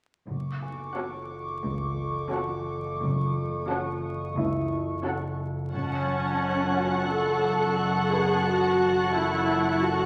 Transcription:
0.29 synth drone F#1, double bass section F#1, cello section F#2, violin section C#6 D6
0.62 grand piano G#5
0.97 viola section C#4 F#4, violin section A4 F#5
1.65 cello section C#2, double bass section C#2
2.33 viola section C#4 F#4, violin section A4 F#5
3.01 double bass section F#1, cello section F#2
3.59 violin section D#6
3.70 viola section C#4 F#4, violin section A4 F#5
4.37 double bass section C#2, cello section C#2, grand piano E4 E5
5.05 viola section C#4 F#4, violin section A4 F#5
5.73 synth drone F#1, double bass section F#1, cello section F#2, viola section C#4, violin section F#5 A5 C#6
6.43 violin section F#6
6.77 grand piano F#4 F#5
7.09 viola section A4
7.45 grand piano A4 A5
8.12 viola section G#4, grand piano B4 B5
8.47 viola section F#4
9.14 viola section E4
9.83 viola section F#4

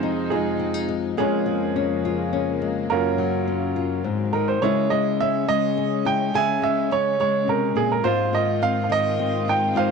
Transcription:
Already playing: nylon-string guitar F2 F3, string section F2 C3 G#3 D#4, upright piano C4 D#4 G#4 C5
0.03 nylon-string guitar D#4
0.30 upright piano G#3 D#4 G#4, nylon-string guitar F4
0.59 nylon-string guitar C4
0.74 nylon-string guitar D#4
0.88 nylon-string guitar G#3
1.17 nylon-string guitar F2 F3 G#3 C#4 F4, string section F2 C#3 G#3 A#3, upright piano G#3 C#4 G#4
1.46 nylon-string guitar F3
1.76 nylon-string guitar C#4
2.05 nylon-string guitar F4
2.33 nylon-string guitar C#4
2.62 nylon-string guitar G#3
2.88 string section F#2 F4, nylon-string guitar F#2, upright piano A#3 C#4 F4 A#4
3.18 nylon-string guitar F#3
3.48 nylon-string guitar C#4
3.76 nylon-string guitar F4
4.04 string section G#2 D#3 F#3 C4, nylon-string guitar G#2
4.33 nylon-string guitar D#3, upright piano A#4
4.48 upright piano C5
4.62 nylon-string guitar C#3 G#3 C#4 G#4, string section C#3 G#3 C#4, upright piano E4 C#5
4.90 nylon-string guitar G#3, upright piano D#5
5.21 nylon-string guitar C#4, upright piano E5
5.48 nylon-string guitar G#3, upright piano D#5
5.77 nylon-string guitar C#4
6.05 nylon-string guitar E4, upright piano G5
6.34 nylon-string guitar C#3 G#4, upright piano E5 G#5
6.62 nylon-string guitar G#3, upright piano E5
6.91 nylon-string guitar C#4, upright piano C#5
7.20 nylon-string guitar G#3, upright piano C#5
7.48 nylon-string guitar C3, upright piano A#4
7.75 nylon-string guitar A#2, upright piano G#4
7.92 upright piano A#4
8.04 nylon-string guitar G#2 F4, string section G#2 C4 F4, upright piano F4 C5
8.33 nylon-string guitar D#3, upright piano D#5
8.62 nylon-string guitar C4, upright piano F5
8.84 upright piano F5
8.90 nylon-string guitar D#3, upright piano D#5
9.19 nylon-string guitar C4
9.48 nylon-string guitar D#4, upright piano G5
9.75 nylon-string guitar G#2 F4, upright piano C5 F5

